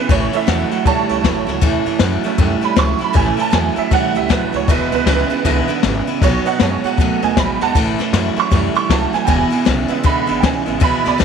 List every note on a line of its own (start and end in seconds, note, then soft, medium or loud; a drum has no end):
0.00 0.10 G#3 soft
0.00 0.10 B4 loud
0.08 0.27 A1 medium
0.08 0.31 A2 medium
0.08 0.33 A2 loud
0.08 0.31 E3 medium
0.08 0.34 E3 medium
0.08 0.34 A3 medium
0.08 0.34 C#4 loud
0.08 0.32 E4 loud
0.08 0.34 C#5 loud
0.08 kick loud
0.08 ride medium
0.32 0.45 A2 medium
0.32 0.46 E3 medium
0.32 0.84 A3 medium
0.32 0.46 A3 medium
0.32 0.84 C#4 medium
0.32 0.48 E4 medium
0.32 0.84 E4 medium
0.32 muted upright bass stroke medium
0.32 ride medium
0.36 0.49 E5 loud
0.47 0.66 E2 medium
0.47 0.69 A2 medium
0.47 0.71 E3 medium
0.47 0.69 F#3 loud
0.47 0.72 A3 medium
0.47 0.71 C#4 medium
0.47 0.70 E4 medium
0.47 0.85 F#5 medium
0.47 snare loud
0.47 ride medium
0.71 0.83 A2 medium
0.71 0.84 F#3 medium
0.71 0.86 A3 soft
0.71 0.86 C#4 medium
0.71 0.86 E4 medium
0.71 muted upright bass stroke medium
0.71 ride medium
0.84 1.04 E2 medium
0.84 1.07 A2 medium
0.84 1.10 A2 medium
0.84 1.10 E3 medium
0.84 1.07 G3 medium
0.84 1.10 A3 loud
0.84 1.10 C#4 medium
0.84 1.08 E4 medium
0.84 1.97 C#5 loud
0.84 1.98 A5 loud
0.84 kick loud
0.84 ride medium
1.09 1.21 C#2 medium
1.09 1.22 A2 medium
1.09 1.23 G3 medium
1.09 1.23 A3 medium
1.09 1.24 A3 soft
1.09 1.23 C#4 soft
1.09 1.25 C#4 medium
1.09 1.24 E4 medium
1.09 1.23 E4 medium
1.09 ride medium
1.24 1.42 F#1 medium
1.24 1.46 A2 medium
1.24 1.48 E3 medium
1.24 1.46 F#3 medium
1.24 1.48 A3 medium
1.24 1.47 C#4 medium
1.24 1.45 E4 medium
1.24 kick medium
1.24 snare loud
1.24 ride medium
1.47 1.59 C#2 loud
1.47 1.60 A2 medium
1.47 1.61 F#3 medium
1.47 1.61 A3 medium
1.47 1.61 C#4 medium
1.47 1.62 E4 medium
1.47 snare soft
1.47 ride medium
1.61 1.80 E2 loud
1.61 1.83 A2 medium
1.61 1.86 A2 loud
1.61 1.84 E3 loud
1.61 1.86 E3 loud
1.61 1.86 A3 loud
1.61 1.86 C#4 medium
1.61 1.84 E4 loud
1.61 kick loud
1.61 ride medium
1.86 1.97 F#2 loud
1.86 1.99 A2 medium
1.86 2.00 E3 medium
1.86 1.99 A3 medium
1.86 2.00 C#4 medium
1.86 2.01 E4 medium
1.86 ride medium
1.99 2.18 F#2 medium
1.99 2.22 A2 medium
1.99 2.24 E3 medium
1.99 2.23 F#3 loud
1.99 2.25 A3 medium
1.99 2.23 C#4 medium
1.99 2.22 E4 medium
1.99 snare loud
1.99 ride medium
2.23 2.38 A2 medium
2.23 2.38 F#3 medium
2.23 3.13 A3 medium
2.23 2.37 A3 medium
2.23 2.38 C#4 medium
2.23 3.13 C#4 medium
2.23 2.39 E4 medium
2.23 3.15 E4 medium
2.23 muted upright bass stroke medium
2.23 ride medium
2.38 2.57 F#2 medium
2.38 2.62 A2 loud
2.38 2.60 A2 medium
2.38 2.63 E3 loud
2.38 2.61 G3 medium
2.38 2.63 A3 loud
2.38 2.62 C#4 loud
2.38 2.60 E4 medium
2.38 kick loud
2.38 ride medium
2.61 2.76 A2 medium
2.61 2.76 G3 medium
2.61 2.75 A3 soft
2.61 2.76 C#4 medium
2.61 2.77 E4 medium
2.61 2.78 B5 loud
2.61 muted upright bass stroke medium
2.61 ride medium
2.76 2.95 C#2 medium
2.76 2.99 A2 medium
2.76 3.00 E3 medium
2.76 2.99 F#3 loud
2.76 3.00 A3 medium
2.76 2.99 C#4 medium
2.76 2.97 E4 medium
2.76 3.01 C#6 medium
2.76 kick medium
2.76 snare loud
2.76 ride medium
2.99 3.14 A2 medium
2.99 3.14 F#3 medium
2.99 3.13 A3 soft
2.99 3.13 C#4 soft
2.99 3.14 E4 medium
2.99 muted upright bass stroke medium
2.99 ride medium
3.04 3.17 B5 medium
3.13 3.33 A1 loud
3.13 3.38 A2 medium
3.13 3.37 A2 medium
3.13 3.39 E3 medium
3.13 3.37 E3 medium
3.13 3.37 A3 medium
3.13 3.43 A3 medium
3.13 3.37 C#4 loud
3.13 3.43 C#4 medium
3.13 3.36 E4 loud
3.13 3.44 E4 medium
3.13 3.39 G#5 loud
3.13 kick loud
3.13 ride medium
3.37 3.52 A2 medium
3.37 3.52 E3 medium
3.37 3.50 A3 soft
3.37 3.51 C#4 medium
3.37 3.51 E4 medium
3.37 muted upright bass stroke medium
3.37 ride medium
3.41 3.54 A5 medium
3.50 3.71 E2 medium
3.50 3.75 A2 medium
3.50 3.76 E3 medium
3.50 3.75 F#3 loud
3.50 3.77 A3 medium
3.50 3.76 C#4 medium
3.50 3.75 E4 medium
3.50 snare loud
3.50 ride medium
3.55 3.77 G#5 loud
3.76 3.90 A2 medium
3.76 3.90 F#3 medium
3.76 3.90 A3 soft
3.76 3.91 C#4 medium
3.76 3.91 E4 medium
3.76 3.92 E5 medium
3.76 muted upright bass stroke medium
3.76 ride medium
3.91 4.10 E2 medium
3.91 4.16 A2 medium
3.91 4.13 A2 medium
3.91 4.16 E3 medium
3.91 4.14 G3 medium
3.91 4.16 A3 medium
3.91 4.15 C#4 medium
3.91 4.14 E4 medium
3.91 4.16 F#5 loud
3.91 kick loud
3.91 snare soft
3.91 ride medium
4.15 4.26 C#2 loud
4.15 4.28 A2 medium
4.15 4.29 G3 medium
4.15 4.29 A3 soft
4.15 4.29 C#4 soft
4.15 4.30 E4 medium
4.15 4.30 E5 medium
4.15 ride medium
4.29 4.48 F#1 medium
4.29 4.51 A2 medium
4.29 4.54 E3 medium
4.29 4.52 F#3 loud
4.29 4.53 A3 medium
4.29 4.53 C#4 medium
4.29 4.52 E4 medium
4.29 4.54 B4 medium
4.29 kick medium
4.29 snare loud
4.29 ride medium
4.53 4.65 C#2 loud
4.53 4.67 A2 medium
4.53 4.67 F#3 medium
4.53 4.69 A3 soft
4.53 4.69 C#4 medium
4.53 4.68 E4 medium
4.53 4.69 C#5 loud
4.53 ride medium
4.68 4.86 E1 loud
4.68 4.93 E2 medium
4.68 4.90 E2 medium
4.68 4.90 B2 medium
4.68 4.93 B2 loud
4.68 4.93 E3 medium
4.68 5.44 G#3 medium
4.68 4.92 G#3 loud
4.68 5.44 B3 medium
4.68 4.91 B3 loud
4.68 5.44 E4 medium
4.68 4.91 E4 loud
4.68 4.93 B4 loud
4.68 kick loud
4.68 ride medium
4.92 5.03 C#2 medium
4.92 5.05 E2 medium
4.92 5.05 B2 medium
4.92 5.06 E3 soft
4.92 5.06 G#3 medium
4.92 5.07 B3 medium
4.92 5.07 E4 medium
4.92 6.05 B4 loud
4.92 snare soft
4.92 ride medium
5.06 5.25 C#2 medium
5.06 5.28 E2 loud
5.06 5.28 C#3 loud
5.06 5.31 E3 medium
5.06 5.30 G#3 medium
5.06 5.30 B3 medium
5.06 5.29 E4 medium
5.06 snare loud
5.06 ride medium
5.30 5.43 E2 medium
5.30 5.44 C#3 medium
5.30 5.44 E3 soft
5.30 5.45 G#3 soft
5.30 5.45 B3 medium
5.30 5.45 E4 medium
5.30 muted upright bass stroke medium
5.30 ride medium
5.44 5.63 C#2 medium
5.44 5.66 E2 medium
5.44 5.69 E2 medium
5.44 5.69 B2 medium
5.44 5.67 D3 loud
5.44 5.69 E3 medium
5.44 5.67 G#3 medium
5.44 5.69 G#3 loud
5.44 5.67 B3 medium
5.44 5.68 B3 medium
5.44 5.67 E4 medium
5.44 5.67 E4 loud
5.44 kick loud
5.44 snare soft
5.44 ride medium
5.68 5.82 E2 medium
5.68 5.82 D3 medium
5.68 5.82 E3 soft
5.68 5.83 G#3 medium
5.68 5.84 B3 medium
5.68 5.83 E4 medium
5.68 muted upright bass stroke medium
5.68 ride medium
5.83 6.02 G#1 medium
5.83 6.05 E2 medium
5.83 6.05 C#3 loud
5.83 6.07 E3 medium
5.83 6.07 G#3 medium
5.83 6.07 B3 medium
5.83 6.06 E4 medium
5.83 snare loud
5.83 ride medium
6.07 6.21 E2 medium
6.07 6.21 C#3 medium
6.07 6.23 E3 medium
6.07 6.22 G#3 soft
6.07 6.22 B3 medium
6.07 6.22 E4 medium
6.07 muted upright bass stroke medium
6.07 ride medium
6.21 6.40 B1 loud
6.21 6.43 B2 medium
6.21 6.46 B2 medium
6.21 6.43 F#3 medium
6.21 6.46 F#3 medium
6.21 6.46 B3 medium
6.21 6.46 D#4 loud
6.21 6.46 F#4 loud
6.21 6.46 C#5 loud
6.21 kick loud
6.21 ride medium
6.44 6.59 B2 medium
6.44 6.68 F#3 medium
6.44 6.59 F#3 medium
6.44 6.68 B3 medium
6.44 6.69 D#4 medium
6.44 6.61 D#4 medium
6.44 6.61 F#4 medium
6.44 6.60 F#5 loud
6.44 muted upright bass stroke medium
6.44 ride medium
6.49 6.61 B3 medium
6.60 6.78 F#2 medium
6.60 6.82 B2 medium
6.60 6.85 F#3 medium
6.60 6.82 G#3 loud
6.60 6.85 B3 medium
6.60 6.85 D#4 medium
6.60 6.85 F#4 medium
6.60 6.84 C#5 loud
6.60 snare loud
6.60 ride medium
6.84 6.97 B2 medium
6.84 6.97 G#3 medium
6.84 7.00 D#4 medium
6.84 6.99 F#4 medium
6.84 7.22 F#5 medium
6.84 muted upright bass stroke medium
6.84 ride medium
6.88 7.00 B3 soft
6.97 7.16 F#2 medium
6.97 7.20 B2 medium
6.97 7.23 B2 medium
6.97 7.23 F#3 medium
6.97 7.21 A3 loud
6.97 7.24 B3 medium
6.97 kick loud
6.97 ride medium
7.01 7.23 D#4 medium
7.01 7.21 F#4 medium
7.22 7.33 D#2 medium
7.22 7.35 B2 medium
7.22 7.35 F#3 medium
7.22 7.36 A3 medium
7.22 7.35 B3 soft
7.22 7.38 B3 medium
7.22 7.36 D#4 medium
7.22 7.38 D#4 medium
7.22 7.37 F#4 medium
7.22 7.37 G#5 loud
7.22 ride medium
7.36 7.55 A1 medium
7.36 7.59 B2 medium
7.36 7.61 F#3 medium
7.36 7.59 G#3 loud
7.36 7.62 B3 medium
7.36 7.61 D#4 medium
7.36 7.60 F#4 medium
7.36 7.61 B5 medium
7.36 kick medium
7.36 snare loud
7.36 ride medium
7.60 7.72 D#2 medium
7.60 7.74 B2 medium
7.60 7.74 G#3 medium
7.60 7.76 B3 soft
7.60 7.76 D#4 medium
7.60 7.75 F#4 medium
7.60 7.75 F#5 loud
7.60 7.76 A5 loud
7.60 snare soft
7.60 ride medium
7.75 7.93 A1 loud
7.75 7.99 A2 medium
7.75 7.97 A2 medium
7.75 7.97 E3 loud
7.75 8.00 E3 medium
7.75 8.00 A3 medium
7.75 7.99 C#4 medium
7.75 7.98 E4 loud
7.75 kick loud
7.75 ride medium
7.99 8.10 F#2 medium
7.99 8.12 A2 medium
7.99 8.12 E3 medium
7.99 8.13 A3 medium
7.99 8.14 C#4 medium
7.99 8.13 E4 medium
7.99 snare soft
7.99 ride medium
8.13 8.31 F#2 medium
8.13 8.35 A2 medium
8.13 8.37 E3 medium
8.13 8.35 F#3 loud
8.13 8.38 A3 medium
8.13 8.36 C#4 medium
8.13 8.35 E4 medium
8.13 snare loud
8.13 ride medium
8.36 8.50 A2 medium
8.36 8.50 F#3 medium
8.36 9.24 A3 medium
8.36 8.51 A3 medium
8.36 9.24 C#4 medium
8.36 8.51 C#4 medium
8.36 8.51 E4 medium
8.36 9.25 E4 medium
8.36 8.52 C#6 loud
8.36 muted upright bass stroke medium
8.36 ride medium
8.51 8.70 F#2 medium
8.51 8.72 A2 medium
8.51 8.75 A2 medium
8.51 8.75 E3 medium
8.51 8.73 G3 medium
8.51 8.75 A3 medium
8.51 8.76 C#4 loud
8.51 8.74 E4 loud
8.51 kick loud
8.51 snare soft
8.51 ride medium
8.74 8.88 A2 medium
8.74 8.88 G3 medium
8.74 8.90 A3 medium
8.74 8.91 C#4 soft
8.74 8.90 E4 medium
8.74 8.90 C#6 medium
8.74 muted upright bass stroke medium
8.74 ride medium
8.89 9.08 C#2 medium
8.89 9.11 A2 medium
8.89 9.14 E3 medium
8.89 9.11 F#3 loud
8.89 9.14 A3 medium
8.89 9.13 C#4 medium
8.89 9.12 E4 medium
8.89 9.14 A5 medium
8.89 kick medium
8.89 snare loud
8.89 ride medium
9.13 9.26 A2 medium
9.13 9.27 F#3 medium
9.13 9.27 A3 soft
9.13 9.28 C#4 medium
9.13 9.27 E4 soft
9.13 9.28 G#5 loud
9.13 muted upright bass stroke medium
9.13 snare soft
9.13 ride medium
9.25 9.46 E1 loud
9.25 9.51 E2 loud
9.25 9.49 E2 medium
9.25 9.52 B2 loud
9.25 9.49 B2 medium
9.25 9.51 E3 loud
9.25 9.51 G#3 loud
9.25 9.50 B3 loud
9.25 9.49 E4 loud
9.25 9.28 G5 medium
9.25 kick loud
9.25 ride medium
9.30 9.66 G#5 loud
9.50 9.65 E2 medium
9.50 9.65 B2 medium
9.50 9.64 E3 soft
9.50 9.64 G#3 medium
9.50 9.65 B3 medium
9.50 9.66 E4 medium
9.50 muted upright bass stroke medium
9.50 ride medium
9.65 9.85 B1 medium
9.65 9.88 E2 medium
9.65 9.88 C#3 loud
9.65 9.89 E3 medium
9.65 9.89 G#3 medium
9.65 9.88 B3 medium
9.65 9.87 E4 medium
9.65 snare loud
9.65 ride medium
9.88 10.03 E2 medium
9.88 10.03 C#3 medium
9.88 10.03 E3 medium
9.88 10.66 G#3 medium
9.88 10.03 G#3 medium
9.88 10.66 B3 soft
9.88 10.04 B3 medium
9.88 10.04 E4 medium
9.88 10.67 E4 medium
9.88 muted upright bass stroke medium
9.88 ride medium
10.03 10.23 B1 medium
10.03 10.28 E2 medium
10.03 10.26 E2 medium
10.03 10.28 B2 medium
10.03 10.26 D3 medium
10.03 10.28 E3 medium
10.03 10.27 G#3 medium
10.03 10.26 B3 medium
10.03 10.26 E4 medium
10.03 10.42 B5 loud
10.03 kick loud
10.03 ride medium
10.27 10.39 G#1 medium
10.27 10.41 E2 medium
10.27 10.41 D3 medium
10.27 10.41 E3 soft
10.27 10.42 G#3 medium
10.27 10.42 B3 medium
10.27 10.42 E4 medium
10.27 ride medium
10.40 10.61 C#2 medium
10.40 10.64 E2 medium
10.40 10.64 C#3 loud
10.40 10.66 E3 medium
10.40 10.66 G#3 medium
10.40 10.65 B3 medium
10.40 10.64 E4 medium
10.40 10.43 G5 medium
10.40 kick medium
10.40 snare loud
10.40 ride medium
10.45 10.81 G#5 medium
10.66 10.78 G#1 loud
10.66 10.80 E2 medium
10.66 10.80 C#3 medium
10.66 10.80 E3 soft
10.66 10.80 G#3 soft
10.66 10.80 B3 medium
10.66 10.80 B3 soft
10.66 10.80 E4 soft
10.66 10.81 E4 medium
10.66 ride medium
10.80 10.99 B1 loud
10.80 11.04 E2 medium
10.80 11.02 E2 medium
10.80 11.05 B2 medium
10.80 11.03 B2 loud
10.80 11.05 E3 medium
10.80 11.05 G#3 loud
10.80 11.25 G#3 medium
10.80 11.04 B3 medium
10.80 11.25 B3 medium
10.80 11.03 E4 loud
10.80 11.25 E4 medium
10.80 11.05 B5 loud
10.80 kick loud
10.80 ride medium
11.04 11.16 C#2 loud
11.04 11.18 E2 medium
11.04 11.18 B2 medium
11.04 11.17 E3 soft
11.04 11.18 G#3 medium
11.04 11.18 B3 medium
11.04 11.19 E4 medium
11.04 11.25 D5 medium
11.04 11.25 B5 loud
11.04 snare soft
11.04 ride medium
11.18 11.25 C#2 medium
11.18 11.25 E2 medium
11.18 11.25 C#3 loud
11.18 11.25 E3 medium
11.18 11.25 G#3 medium
11.18 11.25 B3 medium
11.18 11.25 E4 medium
11.18 snare loud
11.18 ride medium